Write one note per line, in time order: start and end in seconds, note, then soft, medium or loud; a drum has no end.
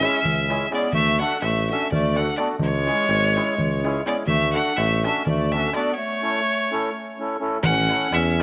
0.00 0.19 G#3 medium
0.00 0.55 C#4 loud
0.00 0.19 C#4 medium
0.00 0.19 E4 medium
0.00 0.20 G#4 medium
0.00 0.68 E5 loud
0.00 darbuka tek medium
0.23 0.65 C#2 medium
0.23 darbuka dum medium
0.38 darbuka tek soft
0.48 0.66 G#3 medium
0.48 0.66 C#4 medium
0.48 0.67 E4 medium
0.48 0.67 G#4 medium
0.48 darbuka tek medium
0.61 darbuka tek soft
0.70 0.88 G#3 medium
0.70 0.92 B3 medium
0.70 0.88 C#4 medium
0.70 0.88 E4 medium
0.70 0.89 G#4 medium
0.70 darbuka tek medium
0.75 0.93 D5 medium
0.83 darbuka tek soft
0.92 1.22 D2 medium
0.92 1.19 A3 loud
0.92 1.18 E5 loud
0.92 darbuka dum medium
1.06 darbuka tek soft
1.19 1.37 A3 medium
1.19 1.37 D4 soft
1.19 1.42 D4 medium
1.19 1.38 F#4 medium
1.19 1.38 A4 medium
1.19 1.41 F#5 loud
1.19 darbuka tek medium
1.31 darbuka tek soft
1.42 1.72 A1 medium
1.42 1.69 A3 medium
1.42 1.67 E5 medium
1.42 darbuka tek medium
1.56 darbuka tek soft
1.69 1.87 A3 medium
1.69 1.92 C#4 medium
1.69 1.87 D4 medium
1.69 1.87 F#4 medium
1.69 1.88 A4 medium
1.69 1.91 E5 medium
1.81 darbuka tek soft
1.91 2.32 D2 medium
1.91 2.19 A3 medium
1.91 2.18 D5 medium
1.91 darbuka dum medium
2.15 2.33 A3 medium
2.15 2.34 D4 medium
2.15 2.39 D4 medium
2.15 2.34 F#4 medium
2.15 2.34 A4 medium
2.15 2.37 F#5 medium
2.15 darbuka tek medium
2.37 2.55 A3 medium
2.37 2.50 B3 medium
2.37 2.56 D4 medium
2.37 2.56 F#4 medium
2.37 2.56 A4 medium
2.37 2.47 D5 medium
2.37 darbuka tek medium
2.59 2.90 C#2 medium
2.59 4.02 G#3 loud
2.59 4.03 C#5 loud
2.59 darbuka dum medium
2.74 darbuka tek soft
2.85 3.04 G#3 medium
2.85 3.05 C#4 medium
2.85 3.05 E4 medium
2.85 3.05 G#4 medium
2.85 darbuka tek medium
2.98 darbuka tek soft
3.08 3.38 G#1 loud
3.08 darbuka tek medium
3.35 3.54 G#3 medium
3.35 3.54 C#4 medium
3.35 3.54 E4 medium
3.35 3.55 G#4 medium
3.35 darbuka tek medium
3.48 darbuka tek soft
3.58 3.99 C#2 medium
3.58 darbuka dum medium
3.83 4.01 G#3 medium
3.83 4.01 C#4 medium
3.83 4.01 E4 medium
3.83 4.02 G#4 medium
3.83 darbuka tek medium
4.05 4.23 G#3 medium
4.05 4.16 B3 medium
4.05 4.23 C#4 medium
4.05 4.23 E4 medium
4.05 4.24 G#4 medium
4.05 4.16 D5 medium
4.05 darbuka tek medium
4.26 4.57 D2 medium
4.26 4.53 A3 medium
4.26 4.52 E5 loud
4.26 darbuka dum medium
4.53 4.72 A3 medium
4.53 4.72 D4 medium
4.53 4.80 D4 medium
4.53 4.73 F#4 medium
4.53 4.73 A4 medium
4.53 4.78 F#5 medium
4.53 darbuka tek soft
4.67 darbuka tek soft
4.76 5.07 A1 loud
4.76 5.05 A3 medium
4.76 5.04 E5 medium
4.76 darbuka tek medium
5.04 5.22 A3 medium
5.04 5.26 C#4 medium
5.04 5.22 D4 medium
5.04 5.23 F#4 medium
5.04 5.23 A4 medium
5.04 5.26 E5 medium
5.04 darbuka tek medium
5.16 darbuka tek soft
5.26 5.67 D2 medium
5.26 5.56 A3 medium
5.26 5.54 D5 medium
5.26 darbuka dum medium
5.52 5.69 A3 medium
5.52 5.75 C#4 medium
5.52 5.69 D4 medium
5.52 5.69 F#4 medium
5.52 5.70 A4 medium
5.52 5.74 E5 medium
5.52 darbuka tek medium
5.73 5.91 A3 medium
5.73 5.95 B3 medium
5.73 5.91 D4 medium
5.73 5.91 F#4 medium
5.73 5.92 A4 medium
5.73 5.95 D5 medium
5.73 darbuka tek medium
5.96 7.38 A3 medium
5.96 7.37 C#5 loud
6.21 6.39 A3 medium
6.21 6.40 C#4 medium
6.21 6.40 E4 soft
6.21 6.40 A4 medium
6.71 6.89 A3 medium
6.71 6.90 C#4 medium
6.71 6.90 E4 medium
6.71 6.90 A4 medium
7.18 7.36 A3 medium
7.18 7.37 C#4 medium
7.18 7.37 E4 medium
7.18 7.37 A4 medium
7.39 7.57 A3 medium
7.39 7.58 C#4 medium
7.39 7.58 E4 medium
7.39 7.58 A4 medium
7.62 7.92 A1 medium
7.62 8.13 C#4 loud
7.62 8.16 F#5 loud
7.62 darbuka dum loud
7.89 8.07 A3 medium
7.89 8.07 C#4 medium
7.89 8.08 E4 medium
7.89 8.08 A4 medium
7.89 darbuka tek medium
8.02 darbuka tek soft
8.12 8.41 E2 loud
8.12 8.42 C#4 medium
8.12 8.42 E5 loud
8.12 darbuka tek medium
8.38 8.43 A3 medium
8.38 8.43 C#4 medium
8.38 8.43 E4 medium